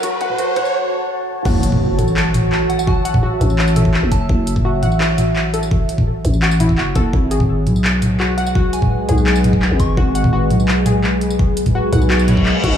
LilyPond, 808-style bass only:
\new Staff \with { instrumentName = "808-style bass" } { \clef bass \time 4/4 \key fis \minor \tempo 4 = 169 r1 | fis,,4. a,,2~ a,,8~ | a,,4. a,,4.~ a,,16 fis,,8. | fis,,4. a,,2~ a,,8~ |
a,,4. a,,4. fis,,8 fis,,8 | gis,,4. b,,2~ b,,8~ | b,,4. b,,4.~ b,,16 gis,,8. | gis,,4. b,,2~ b,,8~ |
b,,4. b,,4.~ b,,16 r16 b,,16 gis,,16 | }